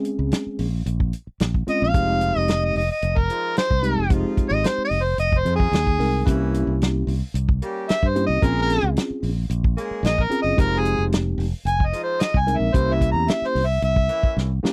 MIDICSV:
0, 0, Header, 1, 7, 480
1, 0, Start_track
1, 0, Key_signature, -4, "minor"
1, 0, Tempo, 540054
1, 1725, Time_signature, 4, 2, 24, 8
1, 13089, End_track
2, 0, Start_track
2, 0, Title_t, "Harmonica"
2, 0, Program_c, 0, 22
2, 1503, Note_on_c, 0, 75, 103
2, 1611, Note_off_c, 0, 75, 0
2, 1632, Note_on_c, 0, 77, 122
2, 2112, Note_off_c, 0, 77, 0
2, 2112, Note_on_c, 0, 75, 122
2, 2353, Note_off_c, 0, 75, 0
2, 2353, Note_on_c, 0, 75, 103
2, 2450, Note_off_c, 0, 75, 0
2, 2464, Note_on_c, 0, 75, 94
2, 2572, Note_off_c, 0, 75, 0
2, 2589, Note_on_c, 0, 75, 82
2, 2824, Note_on_c, 0, 70, 91
2, 2837, Note_off_c, 0, 75, 0
2, 3163, Note_off_c, 0, 70, 0
2, 3181, Note_on_c, 0, 72, 111
2, 3640, Note_off_c, 0, 72, 0
2, 3991, Note_on_c, 0, 75, 108
2, 4147, Note_on_c, 0, 72, 94
2, 4160, Note_off_c, 0, 75, 0
2, 4293, Note_off_c, 0, 72, 0
2, 4306, Note_on_c, 0, 75, 108
2, 4466, Note_on_c, 0, 72, 90
2, 4479, Note_off_c, 0, 75, 0
2, 4612, Note_off_c, 0, 72, 0
2, 4617, Note_on_c, 0, 75, 111
2, 4785, Note_on_c, 0, 72, 95
2, 4799, Note_off_c, 0, 75, 0
2, 4932, Note_off_c, 0, 72, 0
2, 4938, Note_on_c, 0, 68, 106
2, 5554, Note_off_c, 0, 68, 0
2, 7016, Note_on_c, 0, 76, 114
2, 7182, Note_on_c, 0, 72, 97
2, 7195, Note_off_c, 0, 76, 0
2, 7330, Note_off_c, 0, 72, 0
2, 7345, Note_on_c, 0, 75, 103
2, 7502, Note_on_c, 0, 70, 92
2, 7515, Note_off_c, 0, 75, 0
2, 7650, Note_off_c, 0, 70, 0
2, 7661, Note_on_c, 0, 70, 115
2, 7887, Note_off_c, 0, 70, 0
2, 8936, Note_on_c, 0, 75, 116
2, 9094, Note_on_c, 0, 70, 100
2, 9107, Note_off_c, 0, 75, 0
2, 9246, Note_off_c, 0, 70, 0
2, 9263, Note_on_c, 0, 75, 106
2, 9418, Note_on_c, 0, 70, 107
2, 9432, Note_off_c, 0, 75, 0
2, 9585, Note_on_c, 0, 68, 106
2, 9598, Note_off_c, 0, 70, 0
2, 9809, Note_off_c, 0, 68, 0
2, 10377, Note_on_c, 0, 80, 107
2, 10535, Note_on_c, 0, 75, 94
2, 10548, Note_off_c, 0, 80, 0
2, 10686, Note_off_c, 0, 75, 0
2, 10695, Note_on_c, 0, 72, 96
2, 10852, Note_on_c, 0, 75, 105
2, 10866, Note_off_c, 0, 72, 0
2, 11015, Note_on_c, 0, 80, 94
2, 11029, Note_off_c, 0, 75, 0
2, 11172, Note_on_c, 0, 76, 99
2, 11185, Note_off_c, 0, 80, 0
2, 11334, Note_on_c, 0, 72, 107
2, 11348, Note_off_c, 0, 76, 0
2, 11494, Note_on_c, 0, 76, 98
2, 11508, Note_off_c, 0, 72, 0
2, 11645, Note_off_c, 0, 76, 0
2, 11655, Note_on_c, 0, 82, 105
2, 11821, Note_on_c, 0, 76, 97
2, 11835, Note_off_c, 0, 82, 0
2, 11973, Note_on_c, 0, 72, 99
2, 11986, Note_off_c, 0, 76, 0
2, 12137, Note_on_c, 0, 76, 97
2, 12151, Note_off_c, 0, 72, 0
2, 12287, Note_off_c, 0, 76, 0
2, 12303, Note_on_c, 0, 76, 110
2, 12760, Note_off_c, 0, 76, 0
2, 13089, End_track
3, 0, Start_track
3, 0, Title_t, "Tine electric piano"
3, 0, Program_c, 1, 4
3, 0, Note_on_c, 1, 56, 70
3, 0, Note_on_c, 1, 60, 61
3, 0, Note_on_c, 1, 61, 68
3, 0, Note_on_c, 1, 68, 71
3, 571, Note_off_c, 1, 56, 0
3, 572, Note_off_c, 1, 60, 0
3, 575, Note_off_c, 1, 68, 0
3, 576, Note_off_c, 1, 61, 0
3, 1482, Note_on_c, 1, 56, 72
3, 1483, Note_on_c, 1, 60, 67
3, 1487, Note_on_c, 1, 61, 66
3, 1489, Note_on_c, 1, 65, 84
3, 1678, Note_off_c, 1, 56, 0
3, 1679, Note_off_c, 1, 60, 0
3, 1680, Note_off_c, 1, 61, 0
3, 1682, Note_off_c, 1, 65, 0
3, 1720, Note_on_c, 1, 56, 72
3, 1725, Note_on_c, 1, 60, 61
3, 1728, Note_on_c, 1, 63, 70
3, 1728, Note_on_c, 1, 67, 83
3, 2495, Note_off_c, 1, 56, 0
3, 2497, Note_off_c, 1, 60, 0
3, 2499, Note_off_c, 1, 63, 0
3, 2499, Note_off_c, 1, 67, 0
3, 3394, Note_on_c, 1, 56, 77
3, 3396, Note_on_c, 1, 60, 68
3, 3398, Note_on_c, 1, 63, 70
3, 3403, Note_on_c, 1, 67, 77
3, 3595, Note_off_c, 1, 56, 0
3, 3596, Note_off_c, 1, 60, 0
3, 3597, Note_off_c, 1, 63, 0
3, 3599, Note_off_c, 1, 67, 0
3, 3638, Note_on_c, 1, 56, 69
3, 3640, Note_on_c, 1, 60, 63
3, 3644, Note_on_c, 1, 67, 72
3, 3645, Note_on_c, 1, 63, 62
3, 4414, Note_off_c, 1, 56, 0
3, 4415, Note_off_c, 1, 60, 0
3, 4417, Note_off_c, 1, 67, 0
3, 4418, Note_off_c, 1, 63, 0
3, 5324, Note_on_c, 1, 56, 72
3, 5326, Note_on_c, 1, 60, 65
3, 5330, Note_on_c, 1, 63, 63
3, 5332, Note_on_c, 1, 70, 81
3, 5520, Note_off_c, 1, 56, 0
3, 5521, Note_off_c, 1, 60, 0
3, 5523, Note_off_c, 1, 63, 0
3, 5524, Note_off_c, 1, 70, 0
3, 5559, Note_on_c, 1, 58, 85
3, 5563, Note_on_c, 1, 64, 79
3, 5565, Note_on_c, 1, 61, 75
3, 5567, Note_on_c, 1, 67, 85
3, 6334, Note_off_c, 1, 58, 0
3, 6337, Note_off_c, 1, 64, 0
3, 6338, Note_off_c, 1, 61, 0
3, 6339, Note_off_c, 1, 67, 0
3, 7248, Note_on_c, 1, 61, 71
3, 7250, Note_on_c, 1, 64, 69
3, 7250, Note_on_c, 1, 67, 87
3, 7252, Note_on_c, 1, 58, 73
3, 7442, Note_off_c, 1, 61, 0
3, 7443, Note_off_c, 1, 64, 0
3, 7443, Note_off_c, 1, 67, 0
3, 7444, Note_off_c, 1, 58, 0
3, 7481, Note_on_c, 1, 61, 66
3, 7485, Note_on_c, 1, 60, 76
3, 7485, Note_on_c, 1, 65, 61
3, 7489, Note_on_c, 1, 68, 81
3, 8255, Note_off_c, 1, 61, 0
3, 8257, Note_off_c, 1, 60, 0
3, 8258, Note_off_c, 1, 65, 0
3, 8259, Note_off_c, 1, 68, 0
3, 9152, Note_on_c, 1, 60, 79
3, 9156, Note_on_c, 1, 61, 70
3, 9158, Note_on_c, 1, 65, 67
3, 9159, Note_on_c, 1, 68, 81
3, 9354, Note_off_c, 1, 60, 0
3, 9356, Note_off_c, 1, 61, 0
3, 9357, Note_off_c, 1, 65, 0
3, 9357, Note_off_c, 1, 68, 0
3, 9389, Note_on_c, 1, 56, 76
3, 9395, Note_on_c, 1, 60, 64
3, 9395, Note_on_c, 1, 63, 66
3, 9400, Note_on_c, 1, 67, 80
3, 10169, Note_off_c, 1, 56, 0
3, 10172, Note_off_c, 1, 60, 0
3, 10172, Note_off_c, 1, 63, 0
3, 10174, Note_off_c, 1, 67, 0
3, 11080, Note_on_c, 1, 56, 78
3, 11081, Note_on_c, 1, 60, 67
3, 11083, Note_on_c, 1, 70, 81
3, 11087, Note_on_c, 1, 63, 72
3, 11277, Note_off_c, 1, 56, 0
3, 11278, Note_off_c, 1, 60, 0
3, 11279, Note_off_c, 1, 70, 0
3, 11281, Note_off_c, 1, 63, 0
3, 11319, Note_on_c, 1, 61, 68
3, 11321, Note_on_c, 1, 58, 76
3, 11321, Note_on_c, 1, 64, 71
3, 11326, Note_on_c, 1, 67, 85
3, 12093, Note_off_c, 1, 61, 0
3, 12094, Note_off_c, 1, 58, 0
3, 12094, Note_off_c, 1, 64, 0
3, 12097, Note_off_c, 1, 67, 0
3, 13004, Note_on_c, 1, 58, 97
3, 13006, Note_on_c, 1, 64, 81
3, 13009, Note_on_c, 1, 61, 86
3, 13011, Note_on_c, 1, 67, 97
3, 13089, Note_off_c, 1, 58, 0
3, 13089, Note_off_c, 1, 61, 0
3, 13089, Note_off_c, 1, 64, 0
3, 13089, Note_off_c, 1, 67, 0
3, 13089, End_track
4, 0, Start_track
4, 0, Title_t, "Horn section"
4, 0, Program_c, 2, 61
4, 1729, Note_on_c, 2, 63, 70
4, 1731, Note_on_c, 2, 56, 76
4, 1733, Note_on_c, 2, 53, 76
4, 1733, Note_on_c, 2, 65, 83
4, 2208, Note_off_c, 2, 63, 0
4, 2209, Note_off_c, 2, 56, 0
4, 2210, Note_off_c, 2, 53, 0
4, 2210, Note_off_c, 2, 65, 0
4, 2928, Note_on_c, 2, 56, 79
4, 2933, Note_on_c, 2, 53, 78
4, 2933, Note_on_c, 2, 65, 85
4, 2936, Note_on_c, 2, 63, 69
4, 3293, Note_off_c, 2, 56, 0
4, 3295, Note_off_c, 2, 53, 0
4, 3295, Note_off_c, 2, 65, 0
4, 3296, Note_off_c, 2, 63, 0
4, 3660, Note_on_c, 2, 63, 74
4, 3661, Note_on_c, 2, 56, 75
4, 3667, Note_on_c, 2, 53, 84
4, 3667, Note_on_c, 2, 65, 91
4, 4134, Note_off_c, 2, 56, 0
4, 4134, Note_off_c, 2, 63, 0
4, 4137, Note_off_c, 2, 53, 0
4, 4137, Note_off_c, 2, 65, 0
4, 4846, Note_on_c, 2, 56, 77
4, 4850, Note_on_c, 2, 53, 79
4, 4850, Note_on_c, 2, 65, 86
4, 4856, Note_on_c, 2, 63, 69
4, 5212, Note_off_c, 2, 56, 0
4, 5214, Note_off_c, 2, 53, 0
4, 5214, Note_off_c, 2, 65, 0
4, 5217, Note_off_c, 2, 63, 0
4, 5559, Note_on_c, 2, 61, 85
4, 5562, Note_on_c, 2, 52, 97
4, 5562, Note_on_c, 2, 58, 85
4, 5562, Note_on_c, 2, 64, 105
4, 6043, Note_off_c, 2, 61, 0
4, 6045, Note_off_c, 2, 52, 0
4, 6045, Note_off_c, 2, 58, 0
4, 6045, Note_off_c, 2, 64, 0
4, 6771, Note_on_c, 2, 58, 98
4, 6775, Note_on_c, 2, 61, 88
4, 6779, Note_on_c, 2, 55, 101
4, 6779, Note_on_c, 2, 67, 110
4, 7134, Note_off_c, 2, 58, 0
4, 7136, Note_off_c, 2, 61, 0
4, 7138, Note_off_c, 2, 55, 0
4, 7138, Note_off_c, 2, 67, 0
4, 7478, Note_on_c, 2, 58, 81
4, 7486, Note_on_c, 2, 56, 83
4, 7486, Note_on_c, 2, 68, 90
4, 7963, Note_off_c, 2, 58, 0
4, 7967, Note_off_c, 2, 56, 0
4, 7967, Note_off_c, 2, 68, 0
4, 8685, Note_on_c, 2, 61, 81
4, 8687, Note_on_c, 2, 58, 101
4, 8693, Note_on_c, 2, 56, 100
4, 8693, Note_on_c, 2, 68, 108
4, 9051, Note_off_c, 2, 61, 0
4, 9052, Note_off_c, 2, 58, 0
4, 9055, Note_off_c, 2, 56, 0
4, 9055, Note_off_c, 2, 68, 0
4, 9396, Note_on_c, 2, 53, 83
4, 9396, Note_on_c, 2, 65, 90
4, 9397, Note_on_c, 2, 56, 75
4, 9401, Note_on_c, 2, 63, 72
4, 9881, Note_off_c, 2, 53, 0
4, 9881, Note_off_c, 2, 56, 0
4, 9881, Note_off_c, 2, 65, 0
4, 9884, Note_off_c, 2, 63, 0
4, 10595, Note_on_c, 2, 63, 68
4, 10600, Note_on_c, 2, 56, 75
4, 10601, Note_on_c, 2, 53, 86
4, 10601, Note_on_c, 2, 65, 94
4, 10965, Note_off_c, 2, 63, 0
4, 10968, Note_off_c, 2, 53, 0
4, 10968, Note_off_c, 2, 56, 0
4, 10968, Note_off_c, 2, 65, 0
4, 11317, Note_on_c, 2, 58, 83
4, 11321, Note_on_c, 2, 61, 70
4, 11323, Note_on_c, 2, 52, 81
4, 11323, Note_on_c, 2, 64, 88
4, 11801, Note_off_c, 2, 58, 0
4, 11803, Note_off_c, 2, 61, 0
4, 11804, Note_off_c, 2, 52, 0
4, 11804, Note_off_c, 2, 64, 0
4, 12522, Note_on_c, 2, 58, 80
4, 12526, Note_on_c, 2, 52, 83
4, 12526, Note_on_c, 2, 64, 91
4, 12528, Note_on_c, 2, 61, 77
4, 12889, Note_off_c, 2, 58, 0
4, 12891, Note_off_c, 2, 52, 0
4, 12891, Note_off_c, 2, 64, 0
4, 12892, Note_off_c, 2, 61, 0
4, 13089, End_track
5, 0, Start_track
5, 0, Title_t, "Fingered electric bass"
5, 0, Program_c, 3, 33
5, 167, Note_on_c, 3, 37, 89
5, 276, Note_off_c, 3, 37, 0
5, 525, Note_on_c, 3, 34, 84
5, 751, Note_off_c, 3, 34, 0
5, 764, Note_on_c, 3, 34, 93
5, 991, Note_off_c, 3, 34, 0
5, 1248, Note_on_c, 3, 34, 82
5, 1473, Note_off_c, 3, 34, 0
5, 1617, Note_on_c, 3, 34, 89
5, 1719, Note_off_c, 3, 34, 0
5, 1725, Note_on_c, 3, 29, 103
5, 2070, Note_off_c, 3, 29, 0
5, 2099, Note_on_c, 3, 29, 92
5, 2431, Note_off_c, 3, 29, 0
5, 2449, Note_on_c, 3, 29, 84
5, 2566, Note_off_c, 3, 29, 0
5, 2691, Note_on_c, 3, 29, 107
5, 2916, Note_off_c, 3, 29, 0
5, 3293, Note_on_c, 3, 36, 89
5, 3519, Note_off_c, 3, 36, 0
5, 3533, Note_on_c, 3, 29, 83
5, 3759, Note_off_c, 3, 29, 0
5, 4008, Note_on_c, 3, 32, 90
5, 4118, Note_off_c, 3, 32, 0
5, 4363, Note_on_c, 3, 29, 92
5, 4592, Note_off_c, 3, 29, 0
5, 4605, Note_on_c, 3, 29, 87
5, 4833, Note_off_c, 3, 29, 0
5, 4846, Note_on_c, 3, 41, 85
5, 5063, Note_off_c, 3, 41, 0
5, 5080, Note_on_c, 3, 39, 81
5, 5299, Note_off_c, 3, 39, 0
5, 5322, Note_on_c, 3, 36, 76
5, 5541, Note_off_c, 3, 36, 0
5, 5571, Note_on_c, 3, 36, 99
5, 5914, Note_off_c, 3, 36, 0
5, 5928, Note_on_c, 3, 36, 91
5, 6265, Note_off_c, 3, 36, 0
5, 6285, Note_on_c, 3, 36, 90
5, 6404, Note_off_c, 3, 36, 0
5, 6525, Note_on_c, 3, 36, 100
5, 6753, Note_off_c, 3, 36, 0
5, 7134, Note_on_c, 3, 43, 82
5, 7360, Note_off_c, 3, 43, 0
5, 7367, Note_on_c, 3, 36, 87
5, 7478, Note_off_c, 3, 36, 0
5, 7487, Note_on_c, 3, 34, 101
5, 7831, Note_off_c, 3, 34, 0
5, 7847, Note_on_c, 3, 37, 99
5, 7958, Note_off_c, 3, 37, 0
5, 8202, Note_on_c, 3, 34, 81
5, 8431, Note_off_c, 3, 34, 0
5, 8441, Note_on_c, 3, 34, 102
5, 8670, Note_off_c, 3, 34, 0
5, 8914, Note_on_c, 3, 34, 93
5, 9146, Note_off_c, 3, 34, 0
5, 9281, Note_on_c, 3, 30, 84
5, 9394, Note_off_c, 3, 30, 0
5, 9404, Note_on_c, 3, 29, 104
5, 9750, Note_off_c, 3, 29, 0
5, 9763, Note_on_c, 3, 29, 94
5, 10102, Note_off_c, 3, 29, 0
5, 10112, Note_on_c, 3, 29, 96
5, 10237, Note_off_c, 3, 29, 0
5, 10356, Note_on_c, 3, 29, 106
5, 10587, Note_off_c, 3, 29, 0
5, 10969, Note_on_c, 3, 36, 88
5, 11196, Note_off_c, 3, 36, 0
5, 11201, Note_on_c, 3, 34, 89
5, 11314, Note_off_c, 3, 34, 0
5, 11324, Note_on_c, 3, 36, 105
5, 11669, Note_off_c, 3, 36, 0
5, 11678, Note_on_c, 3, 40, 93
5, 11793, Note_off_c, 3, 40, 0
5, 12045, Note_on_c, 3, 36, 88
5, 12271, Note_off_c, 3, 36, 0
5, 12286, Note_on_c, 3, 36, 104
5, 12512, Note_off_c, 3, 36, 0
5, 12769, Note_on_c, 3, 36, 94
5, 12994, Note_off_c, 3, 36, 0
5, 13089, End_track
6, 0, Start_track
6, 0, Title_t, "Muted fingered electric bass strokes"
6, 414, Note_on_c, 9, 29, 40
6, 503, Note_off_c, 9, 29, 0
6, 1130, Note_on_c, 9, 29, 37
6, 1219, Note_off_c, 9, 29, 0
6, 1490, Note_on_c, 9, 29, 39
6, 1579, Note_off_c, 9, 29, 0
6, 4249, Note_on_c, 9, 29, 39
6, 4337, Note_off_c, 9, 29, 0
6, 8091, Note_on_c, 9, 29, 40
6, 8180, Note_off_c, 9, 29, 0
6, 8807, Note_on_c, 9, 29, 39
6, 8896, Note_off_c, 9, 29, 0
6, 9156, Note_on_c, 9, 29, 39
6, 9245, Note_off_c, 9, 29, 0
6, 11927, Note_on_c, 9, 29, 40
6, 12016, Note_off_c, 9, 29, 0
6, 12648, Note_on_c, 9, 29, 40
6, 12737, Note_off_c, 9, 29, 0
6, 13009, Note_on_c, 9, 29, 42
6, 13089, Note_off_c, 9, 29, 0
6, 13089, End_track
7, 0, Start_track
7, 0, Title_t, "Drums"
7, 41, Note_on_c, 9, 42, 61
7, 130, Note_off_c, 9, 42, 0
7, 280, Note_on_c, 9, 42, 76
7, 292, Note_on_c, 9, 38, 112
7, 369, Note_off_c, 9, 42, 0
7, 381, Note_off_c, 9, 38, 0
7, 521, Note_on_c, 9, 46, 78
7, 610, Note_off_c, 9, 46, 0
7, 767, Note_on_c, 9, 42, 82
7, 856, Note_off_c, 9, 42, 0
7, 890, Note_on_c, 9, 36, 82
7, 979, Note_off_c, 9, 36, 0
7, 1004, Note_on_c, 9, 42, 64
7, 1093, Note_off_c, 9, 42, 0
7, 1243, Note_on_c, 9, 42, 77
7, 1255, Note_on_c, 9, 38, 112
7, 1332, Note_off_c, 9, 42, 0
7, 1344, Note_off_c, 9, 38, 0
7, 1373, Note_on_c, 9, 36, 79
7, 1461, Note_off_c, 9, 36, 0
7, 1490, Note_on_c, 9, 42, 63
7, 1579, Note_off_c, 9, 42, 0
7, 1724, Note_on_c, 9, 42, 82
7, 1727, Note_on_c, 9, 36, 100
7, 1813, Note_off_c, 9, 42, 0
7, 1816, Note_off_c, 9, 36, 0
7, 1964, Note_on_c, 9, 42, 69
7, 2052, Note_off_c, 9, 42, 0
7, 2205, Note_on_c, 9, 42, 85
7, 2216, Note_on_c, 9, 38, 100
7, 2293, Note_off_c, 9, 42, 0
7, 2305, Note_off_c, 9, 38, 0
7, 2449, Note_on_c, 9, 46, 75
7, 2538, Note_off_c, 9, 46, 0
7, 2686, Note_on_c, 9, 42, 86
7, 2775, Note_off_c, 9, 42, 0
7, 2813, Note_on_c, 9, 36, 86
7, 2902, Note_off_c, 9, 36, 0
7, 2931, Note_on_c, 9, 42, 60
7, 3020, Note_off_c, 9, 42, 0
7, 3169, Note_on_c, 9, 42, 80
7, 3180, Note_on_c, 9, 38, 106
7, 3258, Note_off_c, 9, 42, 0
7, 3269, Note_off_c, 9, 38, 0
7, 3293, Note_on_c, 9, 36, 84
7, 3382, Note_off_c, 9, 36, 0
7, 3408, Note_on_c, 9, 42, 59
7, 3497, Note_off_c, 9, 42, 0
7, 3644, Note_on_c, 9, 42, 80
7, 3647, Note_on_c, 9, 36, 109
7, 3733, Note_off_c, 9, 42, 0
7, 3736, Note_off_c, 9, 36, 0
7, 3887, Note_on_c, 9, 36, 80
7, 3889, Note_on_c, 9, 42, 55
7, 3976, Note_off_c, 9, 36, 0
7, 3977, Note_off_c, 9, 42, 0
7, 4126, Note_on_c, 9, 42, 81
7, 4137, Note_on_c, 9, 38, 100
7, 4215, Note_off_c, 9, 42, 0
7, 4226, Note_off_c, 9, 38, 0
7, 4366, Note_on_c, 9, 46, 72
7, 4455, Note_off_c, 9, 46, 0
7, 4604, Note_on_c, 9, 42, 81
7, 4693, Note_off_c, 9, 42, 0
7, 4732, Note_on_c, 9, 36, 80
7, 4821, Note_off_c, 9, 36, 0
7, 4849, Note_on_c, 9, 42, 59
7, 4938, Note_off_c, 9, 42, 0
7, 4974, Note_on_c, 9, 36, 85
7, 5063, Note_off_c, 9, 36, 0
7, 5094, Note_on_c, 9, 42, 74
7, 5105, Note_on_c, 9, 38, 109
7, 5183, Note_off_c, 9, 42, 0
7, 5194, Note_off_c, 9, 38, 0
7, 5216, Note_on_c, 9, 36, 89
7, 5305, Note_off_c, 9, 36, 0
7, 5336, Note_on_c, 9, 46, 80
7, 5425, Note_off_c, 9, 46, 0
7, 5570, Note_on_c, 9, 36, 108
7, 5576, Note_on_c, 9, 42, 84
7, 5659, Note_off_c, 9, 36, 0
7, 5665, Note_off_c, 9, 42, 0
7, 5815, Note_on_c, 9, 42, 64
7, 5904, Note_off_c, 9, 42, 0
7, 6058, Note_on_c, 9, 42, 78
7, 6070, Note_on_c, 9, 38, 106
7, 6147, Note_off_c, 9, 42, 0
7, 6158, Note_off_c, 9, 38, 0
7, 6294, Note_on_c, 9, 46, 72
7, 6383, Note_off_c, 9, 46, 0
7, 6534, Note_on_c, 9, 42, 88
7, 6622, Note_off_c, 9, 42, 0
7, 6654, Note_on_c, 9, 36, 84
7, 6743, Note_off_c, 9, 36, 0
7, 6772, Note_on_c, 9, 42, 61
7, 6861, Note_off_c, 9, 42, 0
7, 7012, Note_on_c, 9, 42, 90
7, 7024, Note_on_c, 9, 38, 106
7, 7101, Note_off_c, 9, 42, 0
7, 7112, Note_off_c, 9, 38, 0
7, 7134, Note_on_c, 9, 36, 83
7, 7223, Note_off_c, 9, 36, 0
7, 7252, Note_on_c, 9, 42, 61
7, 7341, Note_off_c, 9, 42, 0
7, 7487, Note_on_c, 9, 36, 98
7, 7492, Note_on_c, 9, 42, 78
7, 7576, Note_off_c, 9, 36, 0
7, 7581, Note_off_c, 9, 42, 0
7, 7730, Note_on_c, 9, 42, 60
7, 7818, Note_off_c, 9, 42, 0
7, 7968, Note_on_c, 9, 42, 82
7, 7980, Note_on_c, 9, 38, 107
7, 8057, Note_off_c, 9, 42, 0
7, 8069, Note_off_c, 9, 38, 0
7, 8207, Note_on_c, 9, 46, 76
7, 8296, Note_off_c, 9, 46, 0
7, 8447, Note_on_c, 9, 42, 83
7, 8536, Note_off_c, 9, 42, 0
7, 8571, Note_on_c, 9, 36, 84
7, 8660, Note_off_c, 9, 36, 0
7, 8692, Note_on_c, 9, 42, 62
7, 8781, Note_off_c, 9, 42, 0
7, 8928, Note_on_c, 9, 42, 77
7, 8940, Note_on_c, 9, 38, 105
7, 9017, Note_off_c, 9, 42, 0
7, 9028, Note_off_c, 9, 38, 0
7, 9049, Note_on_c, 9, 36, 85
7, 9138, Note_off_c, 9, 36, 0
7, 9167, Note_on_c, 9, 42, 60
7, 9255, Note_off_c, 9, 42, 0
7, 9405, Note_on_c, 9, 36, 106
7, 9408, Note_on_c, 9, 42, 80
7, 9494, Note_off_c, 9, 36, 0
7, 9497, Note_off_c, 9, 42, 0
7, 9645, Note_on_c, 9, 42, 65
7, 9734, Note_off_c, 9, 42, 0
7, 9887, Note_on_c, 9, 42, 84
7, 9899, Note_on_c, 9, 38, 103
7, 9976, Note_off_c, 9, 42, 0
7, 9988, Note_off_c, 9, 38, 0
7, 10130, Note_on_c, 9, 46, 72
7, 10218, Note_off_c, 9, 46, 0
7, 10367, Note_on_c, 9, 42, 87
7, 10456, Note_off_c, 9, 42, 0
7, 10489, Note_on_c, 9, 36, 78
7, 10578, Note_off_c, 9, 36, 0
7, 10606, Note_on_c, 9, 42, 65
7, 10695, Note_off_c, 9, 42, 0
7, 10843, Note_on_c, 9, 42, 88
7, 10855, Note_on_c, 9, 38, 113
7, 10932, Note_off_c, 9, 42, 0
7, 10944, Note_off_c, 9, 38, 0
7, 10970, Note_on_c, 9, 36, 88
7, 11059, Note_off_c, 9, 36, 0
7, 11091, Note_on_c, 9, 42, 66
7, 11180, Note_off_c, 9, 42, 0
7, 11325, Note_on_c, 9, 36, 102
7, 11326, Note_on_c, 9, 42, 90
7, 11414, Note_off_c, 9, 36, 0
7, 11415, Note_off_c, 9, 42, 0
7, 11564, Note_on_c, 9, 36, 77
7, 11568, Note_on_c, 9, 42, 63
7, 11653, Note_off_c, 9, 36, 0
7, 11657, Note_off_c, 9, 42, 0
7, 11805, Note_on_c, 9, 42, 76
7, 11817, Note_on_c, 9, 38, 109
7, 11894, Note_off_c, 9, 42, 0
7, 11906, Note_off_c, 9, 38, 0
7, 11943, Note_on_c, 9, 38, 36
7, 12032, Note_off_c, 9, 38, 0
7, 12049, Note_on_c, 9, 46, 76
7, 12138, Note_off_c, 9, 46, 0
7, 12285, Note_on_c, 9, 42, 82
7, 12374, Note_off_c, 9, 42, 0
7, 12410, Note_on_c, 9, 36, 85
7, 12499, Note_off_c, 9, 36, 0
7, 12522, Note_on_c, 9, 42, 53
7, 12611, Note_off_c, 9, 42, 0
7, 12651, Note_on_c, 9, 36, 85
7, 12740, Note_off_c, 9, 36, 0
7, 12779, Note_on_c, 9, 38, 59
7, 12868, Note_off_c, 9, 38, 0
7, 13019, Note_on_c, 9, 38, 95
7, 13089, Note_off_c, 9, 38, 0
7, 13089, End_track
0, 0, End_of_file